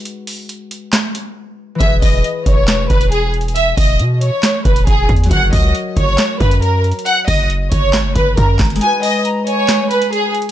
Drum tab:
HH |x-----------o-----------x-----------x-----------x-----------x-----------------------------------|x-----------o-----------x-----------x-----------x-----------x-----x-----x-----------x---x---x---|x-----------o-----------x-----------x-----------x-----------x-----x-----x-----------x---x---x---|x-----------o-----------x-----------x-----------x-----------x-----x-----x-----------x---x---x---|
CP |------------------------------------------------x-----------------------------------------------|------------------------------------------------x-----------------------------------------------|------------------------------------------------x-----------------------------------------------|------------------------------------------------x-----------------------------------------------|
SD |------------------------------------------------o-----------------------------------------------|------------------------------------------------o-----------------------------------------------|------------------------------------------------o-----------------------------------------------|------------------------------------------------o-----------------------------------------------|
BD |------------------------------------------------------------------------------------------------|o-----------o-----------------------o-----------------------o-----------------------------------|------------o-----------------------------------------------o-----------o-----------o-----------|o-----------o-----------------------o-----------------------o-----------------------------------|

HH |x-----------o-----------x-----------x-----------x-----------x-----------x-----------x--x--x--x--|x-----------o-----------x-----------x-----------x-----------x-----x-----x-----------x---x-------|
CP |------------------------------------------------x-----------------------------------x-----------|------------------------------------------------x-----------------------------------------------|
SD |------------------------------------------------o-----------------------------------o-----------|------------------------------------------------o-----------------------------------------------|
BD |------------o-----------------------o-----------------------o-----------o-----------o-----------|------------------------------------------------------------------------------------------------|